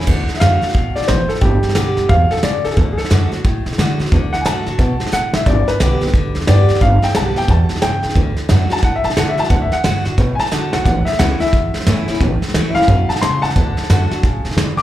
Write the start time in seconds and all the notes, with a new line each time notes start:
0.01 snare
0.07 D2 D3, kick, snare, crash
0.28 muted upright bass stroke, snare
0.35 E5, snare
0.40 F#2 D3 A3 D4 F#4 F5, snare, hi-hat pedal
0.61 D4 F#4, muted upright bass stroke, snare
0.69 snare
0.74 A2 B2, kick, snare
0.96 B2 D5, snare
1.02 snare
1.08 A1 A2 C5, snare, hi-hat pedal
1.29 A4, muted upright bass stroke, snare
1.35 snare
1.41 G1 G2 G4, kick, snare
1.63 snare
1.69 snare
1.75 B1 D3 G3 B3 G4, snare, hi-hat pedal
1.97 D2, snare
2.09 E2 B2 F5, kick, snare
2.31 A4, muted upright bass stroke, snare
2.37 snare
2.43 G2 C#3 D5, snare, hi-hat pedal
2.64 C#2 A4, snare
2.71 G#4, snare
2.77 D2 D3 A4, kick, snare
2.93 G#4
2.98 A4, muted upright bass stroke, snare
3.05 snare
3.10 F#2 D3 A3 D4 F#4, snare, hi-hat pedal
3.31 D4 F#4, muted upright bass stroke, snare
3.45 A2, kick, snare
3.66 B2, snare
3.73 snare
3.78 D3 A3 D4 F#4, snare, hi-hat pedal
3.99 D4 F#4, muted upright bass stroke, snare
4.06 snare
4.12 D2 D3, kick, snare
4.33 F#5, muted upright bass stroke, snare
4.41 D3 G#5
4.45 G2 A3 D4 F#4 A5, snare, hi-hat pedal
4.66 A2 D4 F#4, snare
4.79 B2, kick, snare
5.00 muted upright bass stroke, snare
5.06 snare
5.12 A2 D3 F#5, snare, hi-hat pedal
5.34 F#1 E5, snare
5.46 G1 G2 D5, kick, snare
5.68 B4, muted upright bass stroke, snare
5.80 B1 D3 G3 B3 G4, snare, hi-hat pedal
6.01 B3 G4, muted upright bass stroke, snare
6.07 snare
6.14 D2 D3, kick, snare
6.35 E2, snare
6.41 snare
6.47 G2 D3 G3 B3 G4 D5, snare, hi-hat pedal
6.69 muted upright bass stroke, snare
6.75 snare
6.81 G1 G2 F5, kick, snare
7.02 G5, snare
7.08 snare
7.15 B1 D3 G3 B3 G4 A5, snare, hi-hat pedal
7.36 D2 B3 G4 G5, snare
7.42 snare
7.48 E2 B2 A5, kick, snare
7.69 muted upright bass stroke, snare
7.76 snare
7.82 G2 C#3 G5, snare, hi-hat pedal
8.03 E2, snare
8.09 snare
8.15 D2 D3, kick, snare
8.37 muted upright bass stroke, snare
8.49 F#2 D3 A3 D4 F#4, snare, hi-hat pedal
8.70 D4 F#4 A5, muted upright bass stroke, snare
8.77 snare
8.83 A2 F#5, kick, snare
8.96 E5
9.04 B2 A5, snare
9.10 snare
9.16 D3 A3 D4 F#4 F#5, snare, hi-hat pedal
9.29 E5
9.37 D4 F#4 A5, muted upright bass stroke, snare
9.44 snare
9.50 D2 D3 F#5, kick, snare
9.62 E5
9.72 F#5, snare
9.84 G2 D3 A3 D4 F#4, snare, hi-hat pedal
10.05 A2 D4 F#4, snare
10.18 A2 B2, kick, snare
10.35 G#5, muted upright bass stroke, snare
10.40 A5
10.46 snare
10.51 D3 A3 D4 F#4, snare, hi-hat pedal
10.73 B1 D4 F#4 F#5, snare
10.84 A1 A2 F#5, kick, snare
11.05 E5, snare
11.13 snare
11.19 C#2 E3 A3 C#4 E4 F#5, snare, hi-hat pedal
11.40 C#4 E4 E5, muted upright bass stroke, snare
11.47 snare
11.53 E2, kick, snare
11.74 F#2, snare
11.80 snare
11.87 A2 E3 A3 C#4 E4, snare, hi-hat pedal
12.08 C#4 E4, muted upright bass stroke, snare
12.15 snare
12.21 A1 A2, kick, snare
12.42 muted upright bass stroke, snare
12.48 snare
12.54 D2 E3 A3 C#4 E4, snare, hi-hat pedal
12.70 E5
12.75 E2 C#4 E4 F5, snare
12.82 snare
12.88 F#2 B2, kick, snare
13.09 A5, muted upright bass stroke, snare
13.16 snare
13.21 A2 C#3 C6, snare, hi-hat pedal
13.42 G2 F#5 A5, snare
13.50 snare
13.56 D2 D3, kick, snare
13.77 muted upright bass stroke, snare
13.83 snare
13.90 F#2 D3 A3 D4 F#4, snare, hi-hat pedal
14.11 D4 F#4, muted upright bass stroke, snare
14.23 A2 C#3, kick, snare
14.45 B2, snare
14.51 snare
14.56 G2 D3, snare, hi-hat pedal
14.77 D6, muted upright bass stroke, snare